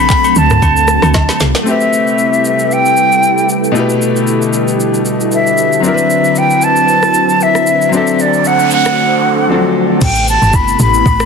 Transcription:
Already playing: string machine D3 F#3 A3 C4 F#4, flute B5
0.00 log drum bass C2
0.10 kick, clap, shaker
0.24 high agogo, shaker
0.36 log drum bass D2, flute A5, shaker
0.50 cross-stick, mid tom, shaker
0.62 log drum bass D2, kick, high agogo, shaker
0.77 shaker
0.88 cross-stick, shaker
1.02 log drum bass D2, cross-stick, high agogo, shaker
1.14 log drum bass D2, kick, snare, low woodblock, shaker
1.29 snare, high agogo, shaker
1.40 log drum bass C2, snare, shaker
1.55 snare, shaker
1.63 string machine C3 G3 E4 A4 B4, grand piano A3 C4, shaker
1.68 grand piano G4 B4, flute E5
1.81 shaker
1.93 shaker
2.07 shaker
2.19 shaker
2.33 shaker
2.45 shaker
2.59 shaker
2.71 flute G5, shaker
2.86 shaker
2.97 shaker
3.12 shaker
3.23 shaker
3.38 shaker
3.49 shaker
3.64 shaker
3.72 grand piano B2 A3 E4, string machine D3
3.76 grand piano G4 B4, shaker
3.90 shaker
4.02 shaker
4.16 shaker
4.27 shaker
4.42 shaker
4.53 shaker
4.68 shaker
4.80 shaker
4.94 shaker
5.06 shaker
5.21 shaker
5.32 flute E5, shaker
5.47 shaker
5.58 shaker
5.73 shaker
5.80 grand piano F#3 C4 D4, string machine F#3 C4 B4, shaker
5.85 grand piano E4 A#4, flute E5
5.94 grand piano B4, shaker
6.10 shaker
6.24 shaker
6.36 flute G5, shaker
6.50 shaker
6.62 flute A5, shaker
6.76 shaker
6.89 shaker
7.03 cross-stick, shaker
7.14 shaker
7.29 shaker
7.41 flute E5, shaker
7.55 cross-stick, shaker
7.67 shaker
7.82 shaker
7.89 grand piano F#3 C4, string machine C5, noise sweep
7.93 string machine D3 A3 F#4, grand piano D4 A4, flute E5, shaker
8.07 shaker
8.19 flute D5, shaker
8.34 shaker
8.45 flute F#5, shaker
8.60 shaker
8.71 flute F#5, shaker
8.85 cross-stick, shaker
9.48 grand piano F3 C4 D4 A4
9.54 grand piano F#3
10.01 log drum bass A1, string machine C3 A3 B3 E4 G4, flute G5, kick, crash, shaker
10.15 shaker
10.28 flute A5, shaker
10.42 log drum bass G1, shaker
10.53 flute B5, kick, shaker
10.68 shaker
10.79 log drum bass A1, flute B5, shaker
10.94 shaker
11.06 log drum bass A1, kick, shaker
11.20 cross-stick, shaker

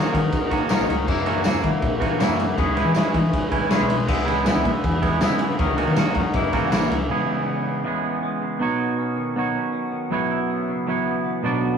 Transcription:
Already playing: clean electric guitar D#3 F#3 A#3 C#4 D#4 F#4 A#4, analog synth pad A#4 D#5 F#5 C#6
0.12 picked electric bass D#3, clean electric guitar C#4 D#4 A#4, kick, ride
0.32 kick, ride
0.51 clean electric guitar D#3 A#3 C#4 F#4, kick, ride
0.68 clean electric guitar D#3 F#3 A#3 C#4 D#4 F#4 A#4, snare, ride, tambourine
0.79 picked electric bass A#1
0.87 picked electric bass C#2, clean electric guitar C#4 D#4 A#4, ride
1.07 clean electric guitar F#2 C#3 E3 A#3 E4, picked electric bass F#2, analog synth pad A#4 E5, kick, crash
1.26 clean electric guitar E3 A#3 C#4 E4 F#4, ride
1.44 clean electric guitar C#3 E3 A#3 C#4 E4 F#4, snare, ride, tambourine
1.54 picked electric bass F#2
1.63 picked electric bass D#3, clean electric guitar E3 A#3 E4, kick, ride
1.82 picked electric bass A#2, kick, ride
2.00 clean electric guitar E3 A#3 C#4 F#4, kick, ride
2.19 clean electric guitar F#2 C#3 E3 A#3 C#4 E4 F#4, snare, ride, tambourine
2.28 picked electric bass F#2
2.38 clean electric guitar E3 A#3 E4, ride
2.57 picked electric bass E2, clean electric guitar E3 G#3 C#4 G#4 B4, analog synth pad B4 G#5, kick, ride
2.67 picked electric bass C#2
2.76 clean electric guitar E3 G#3 C#4 E4 G#4 B4, ride
2.85 picked electric bass E3
2.95 clean electric guitar E3 G#3 C#4 E4 G#4 B4, snare, ride, tambourine
3.14 picked electric bass E3, clean electric guitar C#4 G#4 B4, kick, ride
3.33 kick, ride
3.51 clean electric guitar E3 G#3 C#4 E4, kick, ride
3.69 clean electric guitar E3 G#3 C#4 E4 G#4 B4, snare, ride, tambourine
3.80 picked electric bass B1
3.88 picked electric bass B1, clean electric guitar C#4 G#4 B4, ride
4.07 picked electric bass C#2, clean electric guitar C#3 G#3 B3 E4 B4, analog synth pad E5 C#6, kick, crash
4.26 clean electric guitar E3 G#3 B3 E4 B4, ride
4.45 clean electric guitar E3 G#3 B3 E4 B4, snare, ride, tambourine
4.55 picked electric bass C#2
4.64 picked electric bass A#2, clean electric guitar B3 E4 B4, kick, ride
4.84 picked electric bass E2, kick, ride
5.02 clean electric guitar E3 G#3 B3 E4, kick, ride
5.21 clean electric guitar C#3 E3 G#3 B3 E4 B4, snare, ride, tambourine
5.30 picked electric bass C#3
5.39 clean electric guitar B3 E4 B4, ride
5.57 picked electric bass D#2, clean electric guitar D#3 F#3 C#4 D#4 A#4, analog synth pad A#4 D#5 F#5, kick, ride
5.69 picked electric bass C#2
5.77 clean electric guitar D#3 A#3 C#4 D#4 F#4 A#4, ride
5.88 picked electric bass D#3
5.96 clean electric guitar D#3 F#3 A#3 C#4 D#4 F#4 A#4, snare, ride, tambourine
6.15 picked electric bass F2, clean electric guitar C#4 D#4 A#4, kick, ride
6.32 clean electric guitar F#2 C#3 E3 A#3 E4, picked electric bass F#2, analog synth pad A#4 E5, kick, ride
6.53 picked electric bass G#1, clean electric guitar E3 A#3 C#4 F#4, kick, ride
6.70 picked electric bass A#1, clean electric guitar F#2 C#3 E3 A#3 C#4 E4 F#4, snare, ride, tambourine
6.89 picked electric bass C#2, clean electric guitar E3 A#3 E4, ride
7.09 clean electric guitar C#3 E3 G#3 B3 G#4
7.28 clean electric guitar E4
7.46 clean electric guitar B3
7.67 clean electric guitar C#3
7.84 clean electric guitar C#3 E3 G#3 B3 G#4
8.04 clean electric guitar B3
8.23 clean electric guitar G#3
8.42 clean electric guitar C#3
8.59 clean electric guitar B2 B3 D#4 F#4 C#5
8.80 clean electric guitar D#4
8.98 clean electric guitar C#4
9.17 clean electric guitar D#3
9.36 clean electric guitar F#3 B3 D#4 F#4 C#5
9.55 clean electric guitar C#4
9.72 clean electric guitar F#3
9.92 clean electric guitar D#3
10.10 clean electric guitar F#2 F#3 B3 E4 B4 C#5
10.30 clean electric guitar E4
10.49 clean electric guitar B3
10.68 clean electric guitar C#3
10.87 clean electric guitar E3 F#3 B3 E4 B4 C#5
11.04 clean electric guitar B3
11.24 clean electric guitar E3
11.43 clean electric guitar B2 F#3 B3 D4 F#4 D5
11.62 clean electric guitar B2

